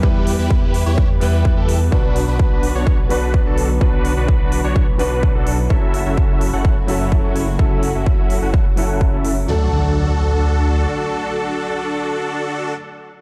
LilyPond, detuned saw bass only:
\new Staff \with { instrumentName = "Detuned saw bass" } { \clef bass \time 4/4 \key d \major \tempo 4 = 127 e,8. e,4 e,8. e,8. e,8. | b,,8. b,,4 b,,8. b,,8. b,,8. | b,,8. b,,4 b,,8. b,,8. b,,8. | fis,,8. fis,,4 fis,,8. fis,,8. fis,,8. |
fis,,8. fis,,4 fis,,8. fis,,8. fis,,8. | d,2. r4 | r1 | }